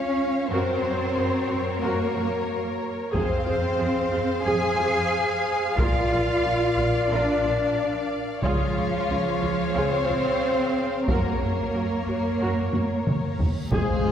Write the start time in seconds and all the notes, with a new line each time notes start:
Already playing: C#4 F4 C#5 F5
0.50 F#2 C4 F#4 A#4 C5 C#5
0.82 F#2 F#4
1.16 F#2 C#3 F#4
1.48 F#2 F#4
1.82 F#2 A#3 F#4 A#4
2.14 F#2 F#4
3.11 F2 C4 G#4 C5 F5, taiko
3.45 F2 F4 G#4
3.78 F2 C4 G#4
4.11 F2 F4 G#4
4.45 F2 G#4 G#5
4.79 F2 F4 G#4
5.77 A#1 F4 A#4 D5 F5, taiko
6.11 A#1 F4
6.43 A#1 D4 F4
6.77 A#1 F4
7.09 A#1 D4 F4 A#4 D5
7.44 A#1 F4
8.41 C#2 F3 F4 G#4 C#5 F5, taiko
8.75 C#2 F4
9.09 C#2 C#4 F4
9.42 C#2 F4
9.74 C#2 C4 F4 G#4 C5
10.08 C#2 F4
11.08 F#2 A#3 F#4 A#4 C#5, taiko, reverse cymbal
11.41 F#2 F#4
11.74 F#2 C#4 F#4
12.07 F#2 F#4
12.40 F#2 F#4 A#4
12.73 F#2 F#4, taiko high
13.07 taiko mid
13.39 taiko low
13.70 F1 F2 G#3 G#4 C5 F5, taiko, impact
14.04 F1 F2 F4